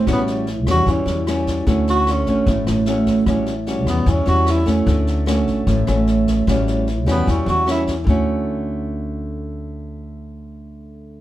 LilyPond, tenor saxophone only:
\new Staff \with { instrumentName = "Tenor saxophone" } { \time 4/4 \key d \major \tempo 4 = 150 b8 r4 fis'8 cis'4 r4 | r8 fis'8 cis'4 r2 | r4. b8 cis'8 fis'8 e'8 r8 | r1 |
r4. b8 cis'8 fis'8 e'8 r8 | r1 | r1 | }